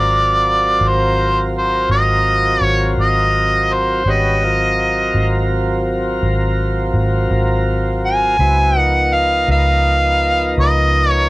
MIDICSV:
0, 0, Header, 1, 4, 480
1, 0, Start_track
1, 0, Tempo, 722892
1, 2702, Time_signature, 12, 3, 24, 8
1, 7497, End_track
2, 0, Start_track
2, 0, Title_t, "Harmonica"
2, 0, Program_c, 0, 22
2, 0, Note_on_c, 0, 74, 81
2, 586, Note_on_c, 0, 72, 77
2, 596, Note_off_c, 0, 74, 0
2, 940, Note_off_c, 0, 72, 0
2, 1053, Note_on_c, 0, 72, 70
2, 1262, Note_off_c, 0, 72, 0
2, 1272, Note_on_c, 0, 75, 85
2, 1750, Note_off_c, 0, 75, 0
2, 1750, Note_on_c, 0, 73, 85
2, 1960, Note_off_c, 0, 73, 0
2, 2001, Note_on_c, 0, 75, 76
2, 2477, Note_on_c, 0, 72, 65
2, 2487, Note_off_c, 0, 75, 0
2, 2729, Note_on_c, 0, 75, 72
2, 2739, Note_off_c, 0, 72, 0
2, 3675, Note_off_c, 0, 75, 0
2, 5350, Note_on_c, 0, 80, 98
2, 5828, Note_off_c, 0, 80, 0
2, 5828, Note_on_c, 0, 78, 98
2, 6067, Note_on_c, 0, 77, 86
2, 6077, Note_off_c, 0, 78, 0
2, 6304, Note_off_c, 0, 77, 0
2, 6316, Note_on_c, 0, 77, 85
2, 7003, Note_off_c, 0, 77, 0
2, 7043, Note_on_c, 0, 75, 86
2, 7375, Note_off_c, 0, 75, 0
2, 7375, Note_on_c, 0, 73, 86
2, 7497, Note_off_c, 0, 73, 0
2, 7497, End_track
3, 0, Start_track
3, 0, Title_t, "Tonewheel organ"
3, 0, Program_c, 1, 16
3, 0, Note_on_c, 1, 54, 55
3, 0, Note_on_c, 1, 60, 60
3, 0, Note_on_c, 1, 65, 58
3, 0, Note_on_c, 1, 70, 58
3, 2677, Note_off_c, 1, 70, 0
3, 2679, Note_off_c, 1, 54, 0
3, 2679, Note_off_c, 1, 65, 0
3, 2681, Note_off_c, 1, 60, 0
3, 2705, Note_on_c, 1, 61, 54
3, 2707, Note_on_c, 1, 55, 52
3, 2707, Note_on_c, 1, 71, 55
3, 2708, Note_on_c, 1, 66, 57
3, 2943, Note_off_c, 1, 61, 0
3, 2943, Note_on_c, 1, 60, 55
3, 2944, Note_off_c, 1, 55, 0
3, 2944, Note_off_c, 1, 71, 0
3, 2945, Note_off_c, 1, 66, 0
3, 2947, Note_on_c, 1, 65, 57
3, 2948, Note_on_c, 1, 54, 55
3, 2952, Note_on_c, 1, 70, 53
3, 5555, Note_off_c, 1, 60, 0
3, 5558, Note_off_c, 1, 54, 0
3, 5558, Note_off_c, 1, 65, 0
3, 5560, Note_off_c, 1, 70, 0
3, 5576, Note_on_c, 1, 71, 52
3, 5578, Note_on_c, 1, 60, 51
3, 5584, Note_on_c, 1, 64, 54
3, 5585, Note_on_c, 1, 54, 56
3, 5819, Note_off_c, 1, 71, 0
3, 5820, Note_off_c, 1, 60, 0
3, 5820, Note_on_c, 1, 63, 57
3, 5822, Note_on_c, 1, 59, 54
3, 5823, Note_off_c, 1, 54, 0
3, 5823, Note_off_c, 1, 64, 0
3, 5824, Note_on_c, 1, 53, 53
3, 5827, Note_on_c, 1, 70, 56
3, 7497, Note_off_c, 1, 53, 0
3, 7497, Note_off_c, 1, 59, 0
3, 7497, Note_off_c, 1, 63, 0
3, 7497, Note_off_c, 1, 70, 0
3, 7497, End_track
4, 0, Start_track
4, 0, Title_t, "Fingered electric bass"
4, 0, Program_c, 2, 33
4, 0, Note_on_c, 2, 32, 84
4, 517, Note_off_c, 2, 32, 0
4, 536, Note_on_c, 2, 32, 78
4, 1233, Note_off_c, 2, 32, 0
4, 1256, Note_on_c, 2, 32, 88
4, 1713, Note_off_c, 2, 32, 0
4, 1734, Note_on_c, 2, 32, 77
4, 1959, Note_off_c, 2, 32, 0
4, 1974, Note_on_c, 2, 32, 86
4, 2671, Note_off_c, 2, 32, 0
4, 2694, Note_on_c, 2, 32, 78
4, 3391, Note_off_c, 2, 32, 0
4, 3414, Note_on_c, 2, 32, 75
4, 4111, Note_off_c, 2, 32, 0
4, 4134, Note_on_c, 2, 32, 84
4, 4591, Note_off_c, 2, 32, 0
4, 4604, Note_on_c, 2, 32, 66
4, 4833, Note_off_c, 2, 32, 0
4, 4851, Note_on_c, 2, 32, 88
4, 5550, Note_off_c, 2, 32, 0
4, 5572, Note_on_c, 2, 37, 80
4, 6270, Note_off_c, 2, 37, 0
4, 6295, Note_on_c, 2, 37, 76
4, 6992, Note_off_c, 2, 37, 0
4, 7022, Note_on_c, 2, 37, 91
4, 7476, Note_off_c, 2, 37, 0
4, 7497, End_track
0, 0, End_of_file